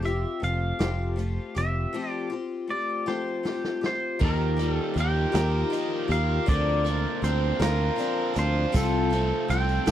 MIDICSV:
0, 0, Header, 1, 7, 480
1, 0, Start_track
1, 0, Tempo, 755668
1, 1239, Time_signature, 6, 3, 24, 8
1, 6295, End_track
2, 0, Start_track
2, 0, Title_t, "Pedal steel guitar"
2, 0, Program_c, 0, 26
2, 34, Note_on_c, 0, 76, 83
2, 277, Note_off_c, 0, 76, 0
2, 279, Note_on_c, 0, 77, 91
2, 1000, Note_off_c, 0, 77, 0
2, 1002, Note_on_c, 0, 76, 78
2, 1339, Note_off_c, 0, 76, 0
2, 1339, Note_on_c, 0, 74, 78
2, 1456, Note_off_c, 0, 74, 0
2, 1718, Note_on_c, 0, 74, 82
2, 1955, Note_on_c, 0, 72, 73
2, 1967, Note_off_c, 0, 74, 0
2, 2444, Note_off_c, 0, 72, 0
2, 2452, Note_on_c, 0, 72, 81
2, 2694, Note_off_c, 0, 72, 0
2, 2694, Note_on_c, 0, 70, 75
2, 3005, Note_off_c, 0, 70, 0
2, 3005, Note_on_c, 0, 69, 75
2, 3142, Note_off_c, 0, 69, 0
2, 3179, Note_on_c, 0, 79, 84
2, 3864, Note_off_c, 0, 79, 0
2, 3886, Note_on_c, 0, 77, 99
2, 4106, Note_off_c, 0, 77, 0
2, 4121, Note_on_c, 0, 74, 86
2, 4598, Note_on_c, 0, 72, 73
2, 4614, Note_off_c, 0, 74, 0
2, 4841, Note_on_c, 0, 70, 80
2, 4845, Note_off_c, 0, 72, 0
2, 5328, Note_on_c, 0, 72, 89
2, 5333, Note_off_c, 0, 70, 0
2, 5566, Note_on_c, 0, 69, 85
2, 5569, Note_off_c, 0, 72, 0
2, 6014, Note_off_c, 0, 69, 0
2, 6036, Note_on_c, 0, 79, 96
2, 6295, Note_off_c, 0, 79, 0
2, 6295, End_track
3, 0, Start_track
3, 0, Title_t, "Accordion"
3, 0, Program_c, 1, 21
3, 2671, Note_on_c, 1, 63, 76
3, 2671, Note_on_c, 1, 65, 79
3, 2672, Note_on_c, 1, 70, 69
3, 2674, Note_on_c, 1, 67, 81
3, 4101, Note_off_c, 1, 63, 0
3, 4101, Note_off_c, 1, 65, 0
3, 4101, Note_off_c, 1, 70, 0
3, 4102, Note_off_c, 1, 67, 0
3, 4113, Note_on_c, 1, 62, 69
3, 4114, Note_on_c, 1, 65, 73
3, 4116, Note_on_c, 1, 70, 77
3, 4120, Note_on_c, 1, 72, 80
3, 5539, Note_off_c, 1, 62, 0
3, 5539, Note_off_c, 1, 65, 0
3, 5540, Note_off_c, 1, 70, 0
3, 5542, Note_off_c, 1, 72, 0
3, 5554, Note_on_c, 1, 72, 82
3, 5556, Note_on_c, 1, 69, 78
3, 5558, Note_on_c, 1, 65, 77
3, 5562, Note_on_c, 1, 60, 81
3, 6295, Note_off_c, 1, 60, 0
3, 6295, Note_off_c, 1, 65, 0
3, 6295, Note_off_c, 1, 69, 0
3, 6295, Note_off_c, 1, 72, 0
3, 6295, End_track
4, 0, Start_track
4, 0, Title_t, "Twelve-string acoustic guitar"
4, 0, Program_c, 2, 25
4, 16, Note_on_c, 2, 67, 53
4, 29, Note_on_c, 2, 65, 52
4, 36, Note_on_c, 2, 60, 41
4, 253, Note_on_c, 2, 57, 39
4, 258, Note_off_c, 2, 60, 0
4, 265, Note_off_c, 2, 65, 0
4, 266, Note_on_c, 2, 60, 49
4, 267, Note_off_c, 2, 67, 0
4, 273, Note_on_c, 2, 65, 44
4, 276, Note_on_c, 2, 67, 49
4, 495, Note_off_c, 2, 67, 0
4, 502, Note_off_c, 2, 65, 0
4, 502, Note_on_c, 2, 67, 63
4, 504, Note_off_c, 2, 60, 0
4, 506, Note_off_c, 2, 57, 0
4, 509, Note_on_c, 2, 65, 51
4, 511, Note_on_c, 2, 60, 57
4, 516, Note_on_c, 2, 57, 48
4, 520, Note_on_c, 2, 53, 47
4, 728, Note_off_c, 2, 57, 0
4, 735, Note_on_c, 2, 57, 50
4, 737, Note_off_c, 2, 60, 0
4, 743, Note_off_c, 2, 65, 0
4, 744, Note_on_c, 2, 60, 54
4, 748, Note_off_c, 2, 67, 0
4, 751, Note_on_c, 2, 65, 55
4, 756, Note_on_c, 2, 67, 58
4, 759, Note_off_c, 2, 53, 0
4, 976, Note_off_c, 2, 67, 0
4, 983, Note_on_c, 2, 67, 50
4, 986, Note_off_c, 2, 65, 0
4, 987, Note_off_c, 2, 57, 0
4, 992, Note_off_c, 2, 60, 0
4, 994, Note_on_c, 2, 65, 43
4, 1003, Note_on_c, 2, 60, 34
4, 1224, Note_on_c, 2, 53, 71
4, 1227, Note_off_c, 2, 60, 0
4, 1227, Note_off_c, 2, 65, 0
4, 1231, Note_on_c, 2, 57, 71
4, 1232, Note_off_c, 2, 67, 0
4, 1234, Note_on_c, 2, 65, 74
4, 1235, Note_on_c, 2, 60, 69
4, 1242, Note_on_c, 2, 67, 76
4, 1452, Note_off_c, 2, 67, 0
4, 1459, Note_on_c, 2, 67, 58
4, 1464, Note_off_c, 2, 65, 0
4, 1471, Note_on_c, 2, 65, 47
4, 1472, Note_off_c, 2, 53, 0
4, 1473, Note_off_c, 2, 60, 0
4, 1476, Note_off_c, 2, 57, 0
4, 1480, Note_on_c, 2, 60, 42
4, 1699, Note_on_c, 2, 57, 42
4, 1701, Note_off_c, 2, 60, 0
4, 1708, Note_on_c, 2, 60, 44
4, 1710, Note_off_c, 2, 65, 0
4, 1710, Note_off_c, 2, 67, 0
4, 1717, Note_on_c, 2, 65, 47
4, 1723, Note_on_c, 2, 67, 47
4, 1936, Note_off_c, 2, 67, 0
4, 1941, Note_off_c, 2, 65, 0
4, 1944, Note_on_c, 2, 67, 58
4, 1946, Note_off_c, 2, 60, 0
4, 1948, Note_off_c, 2, 57, 0
4, 1949, Note_on_c, 2, 65, 53
4, 1954, Note_on_c, 2, 60, 54
4, 1956, Note_on_c, 2, 57, 45
4, 1963, Note_on_c, 2, 53, 50
4, 2172, Note_off_c, 2, 57, 0
4, 2180, Note_on_c, 2, 57, 48
4, 2182, Note_off_c, 2, 60, 0
4, 2188, Note_off_c, 2, 65, 0
4, 2189, Note_on_c, 2, 60, 53
4, 2192, Note_off_c, 2, 67, 0
4, 2196, Note_on_c, 2, 65, 58
4, 2202, Note_off_c, 2, 53, 0
4, 2204, Note_on_c, 2, 67, 63
4, 2414, Note_off_c, 2, 67, 0
4, 2421, Note_on_c, 2, 67, 41
4, 2425, Note_off_c, 2, 65, 0
4, 2431, Note_off_c, 2, 57, 0
4, 2432, Note_on_c, 2, 65, 44
4, 2435, Note_off_c, 2, 60, 0
4, 2443, Note_on_c, 2, 60, 40
4, 2662, Note_off_c, 2, 65, 0
4, 2662, Note_on_c, 2, 51, 74
4, 2663, Note_on_c, 2, 53, 75
4, 2666, Note_off_c, 2, 60, 0
4, 2667, Note_off_c, 2, 67, 0
4, 2669, Note_on_c, 2, 58, 77
4, 2669, Note_on_c, 2, 65, 70
4, 2675, Note_on_c, 2, 67, 77
4, 2892, Note_off_c, 2, 67, 0
4, 2899, Note_on_c, 2, 67, 52
4, 2900, Note_off_c, 2, 65, 0
4, 2907, Note_on_c, 2, 65, 50
4, 2912, Note_off_c, 2, 51, 0
4, 2912, Note_off_c, 2, 53, 0
4, 2915, Note_off_c, 2, 58, 0
4, 2922, Note_on_c, 2, 58, 44
4, 3137, Note_on_c, 2, 53, 50
4, 3141, Note_off_c, 2, 58, 0
4, 3145, Note_off_c, 2, 65, 0
4, 3148, Note_on_c, 2, 58, 46
4, 3150, Note_off_c, 2, 67, 0
4, 3152, Note_on_c, 2, 65, 56
4, 3161, Note_on_c, 2, 67, 56
4, 3371, Note_off_c, 2, 67, 0
4, 3379, Note_off_c, 2, 58, 0
4, 3379, Note_off_c, 2, 65, 0
4, 3379, Note_on_c, 2, 67, 67
4, 3384, Note_off_c, 2, 53, 0
4, 3387, Note_on_c, 2, 58, 55
4, 3387, Note_on_c, 2, 65, 67
4, 3392, Note_on_c, 2, 53, 49
4, 3397, Note_on_c, 2, 51, 46
4, 3613, Note_off_c, 2, 53, 0
4, 3621, Note_on_c, 2, 53, 61
4, 3623, Note_off_c, 2, 58, 0
4, 3630, Note_off_c, 2, 67, 0
4, 3630, Note_on_c, 2, 58, 59
4, 3631, Note_off_c, 2, 65, 0
4, 3638, Note_on_c, 2, 65, 66
4, 3639, Note_off_c, 2, 51, 0
4, 3645, Note_on_c, 2, 67, 72
4, 3854, Note_off_c, 2, 67, 0
4, 3861, Note_on_c, 2, 67, 52
4, 3865, Note_off_c, 2, 65, 0
4, 3871, Note_off_c, 2, 53, 0
4, 3873, Note_on_c, 2, 65, 48
4, 3875, Note_off_c, 2, 58, 0
4, 3883, Note_on_c, 2, 58, 44
4, 4104, Note_on_c, 2, 50, 74
4, 4110, Note_on_c, 2, 53, 84
4, 4111, Note_off_c, 2, 58, 0
4, 4111, Note_off_c, 2, 67, 0
4, 4113, Note_off_c, 2, 65, 0
4, 4114, Note_on_c, 2, 60, 80
4, 4115, Note_on_c, 2, 62, 81
4, 4119, Note_on_c, 2, 70, 91
4, 4339, Note_off_c, 2, 70, 0
4, 4347, Note_on_c, 2, 70, 57
4, 4349, Note_off_c, 2, 62, 0
4, 4352, Note_off_c, 2, 50, 0
4, 4355, Note_off_c, 2, 53, 0
4, 4357, Note_off_c, 2, 60, 0
4, 4357, Note_on_c, 2, 62, 45
4, 4366, Note_on_c, 2, 60, 46
4, 4585, Note_off_c, 2, 60, 0
4, 4585, Note_on_c, 2, 53, 51
4, 4593, Note_off_c, 2, 70, 0
4, 4593, Note_on_c, 2, 60, 52
4, 4594, Note_off_c, 2, 62, 0
4, 4602, Note_on_c, 2, 62, 50
4, 4607, Note_on_c, 2, 70, 57
4, 4817, Note_off_c, 2, 70, 0
4, 4822, Note_off_c, 2, 62, 0
4, 4824, Note_on_c, 2, 70, 69
4, 4826, Note_off_c, 2, 60, 0
4, 4829, Note_on_c, 2, 62, 70
4, 4830, Note_off_c, 2, 53, 0
4, 4833, Note_on_c, 2, 60, 55
4, 4837, Note_on_c, 2, 53, 55
4, 4839, Note_on_c, 2, 50, 51
4, 5050, Note_off_c, 2, 53, 0
4, 5057, Note_on_c, 2, 53, 57
4, 5060, Note_off_c, 2, 60, 0
4, 5065, Note_off_c, 2, 62, 0
4, 5067, Note_on_c, 2, 60, 66
4, 5071, Note_off_c, 2, 70, 0
4, 5073, Note_on_c, 2, 62, 67
4, 5078, Note_off_c, 2, 50, 0
4, 5081, Note_on_c, 2, 70, 67
4, 5288, Note_off_c, 2, 70, 0
4, 5295, Note_on_c, 2, 70, 52
4, 5298, Note_off_c, 2, 62, 0
4, 5306, Note_on_c, 2, 62, 57
4, 5307, Note_off_c, 2, 53, 0
4, 5309, Note_off_c, 2, 60, 0
4, 5317, Note_on_c, 2, 60, 44
4, 5540, Note_on_c, 2, 48, 71
4, 5541, Note_off_c, 2, 60, 0
4, 5543, Note_on_c, 2, 53, 89
4, 5546, Note_off_c, 2, 70, 0
4, 5549, Note_off_c, 2, 62, 0
4, 5549, Note_on_c, 2, 60, 85
4, 5552, Note_on_c, 2, 65, 77
4, 5553, Note_on_c, 2, 69, 88
4, 5774, Note_off_c, 2, 69, 0
4, 5782, Note_on_c, 2, 69, 53
4, 5787, Note_off_c, 2, 48, 0
4, 5789, Note_off_c, 2, 53, 0
4, 5789, Note_off_c, 2, 65, 0
4, 5792, Note_off_c, 2, 60, 0
4, 5797, Note_on_c, 2, 65, 55
4, 5804, Note_on_c, 2, 60, 45
4, 6024, Note_on_c, 2, 53, 54
4, 6028, Note_off_c, 2, 69, 0
4, 6030, Note_off_c, 2, 60, 0
4, 6033, Note_off_c, 2, 65, 0
4, 6037, Note_on_c, 2, 60, 45
4, 6040, Note_on_c, 2, 65, 59
4, 6049, Note_on_c, 2, 69, 57
4, 6255, Note_off_c, 2, 69, 0
4, 6262, Note_off_c, 2, 65, 0
4, 6262, Note_on_c, 2, 69, 65
4, 6265, Note_off_c, 2, 60, 0
4, 6269, Note_off_c, 2, 53, 0
4, 6270, Note_on_c, 2, 65, 69
4, 6272, Note_on_c, 2, 60, 67
4, 6276, Note_on_c, 2, 53, 64
4, 6295, Note_off_c, 2, 53, 0
4, 6295, Note_off_c, 2, 60, 0
4, 6295, Note_off_c, 2, 65, 0
4, 6295, Note_off_c, 2, 69, 0
4, 6295, End_track
5, 0, Start_track
5, 0, Title_t, "Overdriven electric guitar"
5, 0, Program_c, 3, 29
5, 2676, Note_on_c, 3, 51, 63
5, 2917, Note_on_c, 3, 55, 58
5, 3162, Note_on_c, 3, 63, 64
5, 3399, Note_on_c, 3, 70, 73
5, 3629, Note_off_c, 3, 63, 0
5, 3637, Note_on_c, 3, 63, 64
5, 3869, Note_off_c, 3, 70, 0
5, 3877, Note_on_c, 3, 70, 60
5, 3878, Note_off_c, 3, 51, 0
5, 4114, Note_on_c, 3, 50, 72
5, 4118, Note_off_c, 3, 55, 0
5, 4118, Note_off_c, 3, 63, 0
5, 4118, Note_off_c, 3, 70, 0
5, 4351, Note_on_c, 3, 58, 54
5, 4596, Note_on_c, 3, 60, 66
5, 4837, Note_on_c, 3, 65, 74
5, 5074, Note_off_c, 3, 60, 0
5, 5076, Note_on_c, 3, 60, 61
5, 5314, Note_off_c, 3, 50, 0
5, 5319, Note_off_c, 3, 65, 0
5, 5321, Note_on_c, 3, 65, 66
5, 5552, Note_off_c, 3, 58, 0
5, 5556, Note_on_c, 3, 48, 69
5, 5797, Note_on_c, 3, 57, 63
5, 6032, Note_off_c, 3, 60, 0
5, 6035, Note_on_c, 3, 60, 65
5, 6278, Note_off_c, 3, 65, 0
5, 6295, Note_off_c, 3, 48, 0
5, 6295, Note_off_c, 3, 57, 0
5, 6295, Note_off_c, 3, 60, 0
5, 6295, End_track
6, 0, Start_track
6, 0, Title_t, "Picked electric bass"
6, 0, Program_c, 4, 34
6, 0, Note_on_c, 4, 29, 87
6, 155, Note_off_c, 4, 29, 0
6, 273, Note_on_c, 4, 29, 83
6, 455, Note_off_c, 4, 29, 0
6, 509, Note_on_c, 4, 29, 85
6, 874, Note_off_c, 4, 29, 0
6, 994, Note_on_c, 4, 29, 74
6, 1176, Note_off_c, 4, 29, 0
6, 2675, Note_on_c, 4, 39, 77
6, 3038, Note_off_c, 4, 39, 0
6, 3151, Note_on_c, 4, 39, 72
6, 3335, Note_off_c, 4, 39, 0
6, 3393, Note_on_c, 4, 39, 96
6, 3576, Note_off_c, 4, 39, 0
6, 3869, Note_on_c, 4, 39, 86
6, 4053, Note_off_c, 4, 39, 0
6, 4117, Note_on_c, 4, 38, 74
6, 4478, Note_off_c, 4, 38, 0
6, 4590, Note_on_c, 4, 38, 89
6, 4773, Note_off_c, 4, 38, 0
6, 4827, Note_on_c, 4, 38, 94
6, 5011, Note_off_c, 4, 38, 0
6, 5313, Note_on_c, 4, 38, 81
6, 5494, Note_off_c, 4, 38, 0
6, 5556, Note_on_c, 4, 36, 89
6, 5915, Note_off_c, 4, 36, 0
6, 6033, Note_on_c, 4, 36, 93
6, 6213, Note_off_c, 4, 36, 0
6, 6271, Note_on_c, 4, 36, 98
6, 6295, Note_off_c, 4, 36, 0
6, 6295, End_track
7, 0, Start_track
7, 0, Title_t, "Drums"
7, 35, Note_on_c, 9, 42, 49
7, 98, Note_off_c, 9, 42, 0
7, 275, Note_on_c, 9, 42, 50
7, 338, Note_off_c, 9, 42, 0
7, 510, Note_on_c, 9, 42, 78
7, 511, Note_on_c, 9, 38, 98
7, 574, Note_off_c, 9, 38, 0
7, 574, Note_off_c, 9, 42, 0
7, 754, Note_on_c, 9, 42, 50
7, 817, Note_off_c, 9, 42, 0
7, 992, Note_on_c, 9, 42, 56
7, 1055, Note_off_c, 9, 42, 0
7, 1954, Note_on_c, 9, 38, 47
7, 2018, Note_off_c, 9, 38, 0
7, 2193, Note_on_c, 9, 38, 59
7, 2256, Note_off_c, 9, 38, 0
7, 2314, Note_on_c, 9, 38, 53
7, 2378, Note_off_c, 9, 38, 0
7, 2437, Note_on_c, 9, 38, 67
7, 2501, Note_off_c, 9, 38, 0
7, 2674, Note_on_c, 9, 49, 91
7, 2677, Note_on_c, 9, 36, 99
7, 2738, Note_off_c, 9, 49, 0
7, 2740, Note_off_c, 9, 36, 0
7, 2917, Note_on_c, 9, 42, 53
7, 2980, Note_off_c, 9, 42, 0
7, 3159, Note_on_c, 9, 42, 66
7, 3222, Note_off_c, 9, 42, 0
7, 3396, Note_on_c, 9, 42, 91
7, 3397, Note_on_c, 9, 38, 104
7, 3460, Note_off_c, 9, 38, 0
7, 3460, Note_off_c, 9, 42, 0
7, 3640, Note_on_c, 9, 42, 66
7, 3703, Note_off_c, 9, 42, 0
7, 3881, Note_on_c, 9, 42, 62
7, 3945, Note_off_c, 9, 42, 0
7, 4118, Note_on_c, 9, 36, 108
7, 4119, Note_on_c, 9, 42, 79
7, 4182, Note_off_c, 9, 36, 0
7, 4182, Note_off_c, 9, 42, 0
7, 4358, Note_on_c, 9, 42, 56
7, 4422, Note_off_c, 9, 42, 0
7, 4598, Note_on_c, 9, 42, 68
7, 4661, Note_off_c, 9, 42, 0
7, 4839, Note_on_c, 9, 42, 93
7, 4840, Note_on_c, 9, 38, 101
7, 4903, Note_off_c, 9, 38, 0
7, 4903, Note_off_c, 9, 42, 0
7, 5074, Note_on_c, 9, 42, 66
7, 5137, Note_off_c, 9, 42, 0
7, 5310, Note_on_c, 9, 42, 62
7, 5373, Note_off_c, 9, 42, 0
7, 5553, Note_on_c, 9, 42, 83
7, 5555, Note_on_c, 9, 36, 115
7, 5557, Note_on_c, 9, 54, 92
7, 5617, Note_off_c, 9, 42, 0
7, 5619, Note_off_c, 9, 36, 0
7, 5621, Note_off_c, 9, 54, 0
7, 5796, Note_on_c, 9, 42, 59
7, 5796, Note_on_c, 9, 54, 29
7, 5859, Note_off_c, 9, 54, 0
7, 5860, Note_off_c, 9, 42, 0
7, 6033, Note_on_c, 9, 42, 64
7, 6096, Note_off_c, 9, 42, 0
7, 6154, Note_on_c, 9, 54, 32
7, 6218, Note_off_c, 9, 54, 0
7, 6270, Note_on_c, 9, 42, 81
7, 6271, Note_on_c, 9, 38, 103
7, 6274, Note_on_c, 9, 54, 104
7, 6295, Note_off_c, 9, 38, 0
7, 6295, Note_off_c, 9, 42, 0
7, 6295, Note_off_c, 9, 54, 0
7, 6295, End_track
0, 0, End_of_file